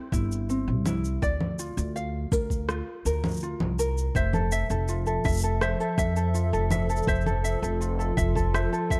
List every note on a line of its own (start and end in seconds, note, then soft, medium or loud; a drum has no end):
0.00 0.48 C4 medium
0.00 0.11 E4 medium
0.00 1.22 G4 medium
0.00 1.30 E5 medium
0.12 0.69 G1 medium
0.12 0.85 E4 medium
0.12 kick medium
0.12 shaker medium
0.32 shaker soft
0.49 1.30 C4 medium
0.49 shaker soft
0.68 1.15 C2 medium
0.86 1.30 E4 medium
0.86 low conga medium
0.86 shaker medium
1.05 shaker soft
1.22 1.70 D2 medium
1.22 4.15 D5 medium
1.22 kick loud
1.22 shaker soft
1.41 low conga medium
1.59 2.69 F4 medium
1.59 shaker medium
1.77 2.25 D2 medium
1.77 shaker soft
1.96 3.06 F5 medium
1.96 shaker soft
2.32 2.80 D2 medium
2.32 2.68 A#4 medium
2.32 kick medium
2.32 shaker medium
2.50 kick medium
2.50 shaker soft
2.69 3.43 F4 medium
2.69 cross-stick medium
2.69 shaker soft
3.05 3.53 D2 medium
3.05 3.78 A#4 medium
3.05 shaker medium
3.24 low conga medium
3.24 shaker soft
3.28 shaker soft
3.31 shaker soft
3.33 shaker soft
3.37 shaker soft
3.40 shaker soft
3.43 4.55 F4 medium
3.43 shaker soft
3.60 4.08 C2 medium
3.60 low conga medium
3.79 4.23 A#4 medium
3.79 shaker medium
3.98 shaker soft
4.15 4.63 F1 medium
4.15 9.00 F3 medium
4.15 9.00 A4 medium
4.15 5.61 C5 medium
4.15 7.05 E5 medium
4.15 4.51 E5 medium
4.15 kick loud
4.15 shaker soft
4.33 4.69 A4 medium
4.33 low conga medium
4.33 shaker soft
4.52 5.24 E5 medium
4.52 shaker medium
4.70 5.18 F1 medium
4.70 5.05 A4 medium
4.70 shaker soft
4.88 6.34 F4 medium
4.88 shaker soft
5.07 5.42 A4 medium
5.07 shaker soft
5.25 5.72 F1 loud
5.25 5.61 E5 medium
5.25 kick loud
5.25 shaker soft
5.27 shaker soft
5.30 shaker soft
5.32 shaker soft
5.34 shaker medium
5.37 shaker medium
5.39 shaker medium
5.41 5.79 A4 medium
5.41 shaker medium
5.44 shaker soft
5.61 7.07 C5 medium
5.61 5.97 E5 medium
5.61 cross-stick medium
5.61 shaker soft
5.80 6.15 A4 medium
5.80 shaker soft
5.98 6.55 F2 loud
5.98 6.70 E5 medium
5.98 kick medium
5.98 shaker medium
6.16 6.52 A4 medium
6.16 shaker soft
6.34 7.80 F4 medium
6.34 shaker soft
6.53 7.01 F1 medium
6.53 6.88 A4 medium
6.53 shaker soft
6.71 7.07 E5 medium
6.71 low conga medium
6.71 shaker medium
6.89 7.25 A4 medium
6.89 shaker soft
6.96 shaker soft
7.03 shaker soft
7.07 7.55 F1 medium
7.07 9.00 F4 medium
7.07 8.53 C5 medium
7.07 7.43 E5 medium
7.07 kick loud
7.07 shaker soft
7.15 shaker soft
7.21 shaker soft
7.26 7.61 A4 medium
7.26 low conga medium
7.26 shaker soft
7.44 8.16 E5 medium
7.44 shaker medium
7.62 8.10 F1 medium
7.62 7.98 A4 medium
7.62 shaker soft
7.81 9.00 F4 medium
7.81 shaker soft
7.99 8.35 A4 medium
7.99 shaker soft
8.17 8.65 F1 loud
8.17 8.53 E5 medium
8.17 kick loud
8.17 shaker medium
8.35 8.71 A4 medium
8.35 kick medium
8.35 shaker soft
8.54 9.00 C5 medium
8.54 8.90 E5 medium
8.54 cross-stick medium
8.54 shaker soft
8.73 9.00 A4 medium
8.73 shaker soft
8.90 9.00 F2 loud
8.90 9.00 E5 medium
8.90 kick loud
8.90 shaker medium